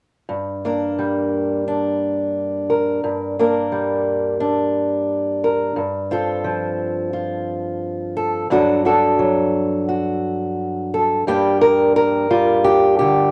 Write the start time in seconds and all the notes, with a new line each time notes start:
0.29 G2
0.65 A#3 D4 A#4
0.98 G3
1.68 D4
2.70 A#4
3.04 G2
3.39 A#3 D4 A#4
3.72 G3
4.40 D4
5.44 A#4
5.76 G2
6.11 C4 F4 A4
6.44 F3
7.13 F4
8.17 A4
8.50 G2 F#3 D4 F#4 A4
8.85 D4 F#4 A4
9.19 F#3
9.89 F#4
10.94 A4
11.27 G2 G3 A#3 D4 G4
11.61 A#4
11.96 A#4
12.30 G3 F4
12.64 G4
12.99 D3 G4